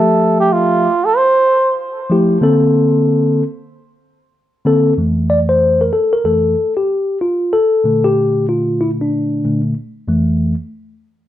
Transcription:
0.00 0.86 F3 medium
0.00 0.90 A3 medium
0.00 0.87 G4 medium
0.00 0.36 A4 medium
0.00 0.87 E5 medium
0.40 0.54 G4 medium
0.53 1.06 F4 medium
1.05 1.18 A4 medium
1.17 1.79 C5 loud
2.10 2.36 F3 medium
2.10 2.37 A3 medium
2.10 2.37 E4 medium
2.10 2.37 G4 medium
2.41 3.41 D3 loud
2.41 3.42 A#3 medium
2.41 3.42 C4 medium
2.41 3.42 A4 loud
4.65 4.91 D3 medium
4.65 4.92 A#3 medium
4.65 4.92 C4 medium
4.65 4.93 A4 loud
4.97 5.89 F2 medium
4.97 5.89 E3 medium
4.97 5.90 A3 medium
5.30 5.39 D5 medium
5.49 5.82 C5 medium
5.81 5.94 A#4 medium
5.93 6.13 A4 medium
6.13 6.25 A#4 medium
6.25 6.54 F2 soft
6.25 6.54 E3 soft
6.25 6.54 A3 soft
6.25 6.73 A4 medium
6.77 7.18 G4 medium
7.21 7.54 F4 medium
7.53 8.06 A4 loud
7.84 9.43 A#2 medium
7.84 9.44 D3 soft
7.84 9.44 A3 medium
8.04 8.45 G4 medium
8.49 8.81 F4 medium
8.81 8.90 E4 medium
9.01 9.61 D4 medium
9.44 9.73 A#2 soft
9.44 9.73 D3 soft
9.44 9.73 A3 soft
10.08 10.53 F2 medium
10.08 10.53 E3 medium
10.08 10.54 A3 medium

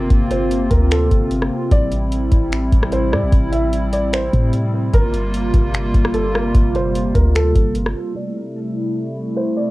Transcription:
0.00 4.89 C3 medium
0.00 1.68 A#3 medium
0.00 4.89 C4 medium
0.00 1.68 F4 loud
0.10 0.68 G1 loud
0.10 kick loud
0.10 closed hi-hat medium
0.30 0.68 C5 medium
0.30 closed hi-hat medium
0.51 closed hi-hat medium
0.70 1.09 D2 loud
0.70 0.89 A#4 medium
0.70 kick loud
0.70 closed hi-hat medium
0.91 1.29 A4 medium
0.91 finger snap loud
0.91 closed hi-hat medium
1.11 1.50 G1 loud
1.11 kick medium
1.11 closed hi-hat medium
1.31 closed hi-hat medium
1.42 cross-stick medium
1.71 2.29 A1 loud
1.71 4.90 G3 medium
1.71 4.90 E4 medium
1.71 2.88 D5 loud
1.71 kick loud
1.71 closed hi-hat medium
1.92 closed hi-hat medium
2.12 closed hi-hat medium
2.32 2.70 A1 loud
2.32 kick loud
2.32 closed hi-hat medium
2.52 finger snap loud
2.52 closed hi-hat medium
2.72 3.14 A1 loud
2.72 kick medium
2.72 closed hi-hat medium
2.83 cross-stick loud
2.92 3.11 C5 medium
2.92 closed hi-hat medium
3.12 3.24 A2 loud
3.12 3.31 D5 medium
3.12 cross-stick loud
3.22 3.32 A1 loud
3.32 4.29 A1 loud
3.32 kick loud
3.32 closed hi-hat medium
3.52 3.90 E5 medium
3.52 closed hi-hat medium
3.73 closed hi-hat medium
3.93 4.12 D5 medium
3.93 closed hi-hat medium
4.13 4.51 C5 medium
4.13 finger snap loud
4.13 closed hi-hat medium
4.33 4.91 A2 loud
4.33 kick medium
4.33 closed hi-hat medium
4.53 closed hi-hat medium
4.94 5.52 G1 loud
4.94 8.13 C3 medium
4.94 8.13 G3 medium
4.94 8.12 A#3 medium
4.94 8.13 F4 medium
4.94 6.11 A#4 loud
4.94 kick loud
4.94 closed hi-hat medium
5.14 closed hi-hat medium
5.34 closed hi-hat medium
5.54 5.93 G1 loud
5.54 kick loud
5.54 closed hi-hat medium
5.74 finger snap loud
5.74 closed hi-hat medium
5.94 6.52 G1 loud
5.94 kick medium
5.94 closed hi-hat medium
6.05 cross-stick loud
6.14 6.33 A4 medium
6.14 closed hi-hat medium
6.34 6.53 A#4 medium
6.34 cross-stick loud
6.55 7.13 G1 loud
6.55 kick loud
6.55 closed hi-hat medium
6.75 7.13 C5 medium
6.75 closed hi-hat medium
6.95 closed hi-hat medium
7.15 7.54 D2 loud
7.15 7.34 A#4 medium
7.15 kick loud
7.15 closed hi-hat medium
7.35 7.73 A4 loud
7.35 finger snap loud
7.35 closed hi-hat medium
7.55 7.94 G1 loud
7.55 kick medium
7.55 closed hi-hat medium
7.75 closed hi-hat medium
7.86 cross-stick medium
8.16 9.71 C3 medium
8.16 9.71 G3 medium
8.16 9.71 A3 medium
8.16 9.71 E4 medium
8.16 9.33 D5 loud
9.37 9.56 C5 medium
9.57 9.71 D5 medium

